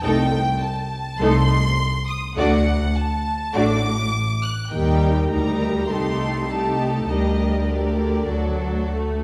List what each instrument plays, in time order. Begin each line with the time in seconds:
0.03 cello section C2, double bass section C2, viola section A3 D#4, violin section A4 G5
0.62 violin section A5
1.19 double bass section C2, cello section C2, viola section A3 D#4, violin section A4 C6
2.08 violin section D#6
2.36 double bass section D2, cello section D2, viola section A3 D4, violin section F#4 D5 F#5
2.96 violin section A5
3.54 double bass section A1, cello section A2, viola section A3 D4, violin section F#4 D5 D6
4.43 violin section F#6
4.72 cello section D#2, double bass section D#2, viola section G3 D#4, violin section G4 A#4 G5
5.31 cello section D2, double bass section D2, viola section G3 D#4, violin section G4 A#4 A#5
5.89 cello section C2, double bass section C2, viola section A3 D#4, violin section G4 A4 C6
6.49 viola section A3 D#4, violin section G4 A4 A5
7.09 cello section D2, double bass section D2, viola section G3 D4, violin section G4 A#4 D#5
7.70 viola section D3, violin section G4 A#4 D5
8.30 double bass section D2, cello section D2, viola section F#3, violin section F#4 A4
8.90 viola section A3